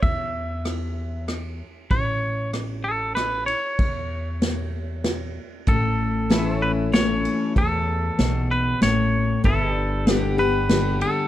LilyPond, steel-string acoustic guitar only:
\new Staff \with { instrumentName = "Steel-string acoustic guitar" } { \time 3/4 \key a \mixolydian \tempo 4 = 96 << { r2. | r2. | r2. | r4 <e a cis' e'>4 <e a cis' e'>4 |
r2. | r4 <d g b g'>8 <b g'>8 <d g b g'>4 | } \\ { r2. | r2. | r2. | a,2 r4 |
e,4 b,4 a,4 | g,2 r4 | } >> }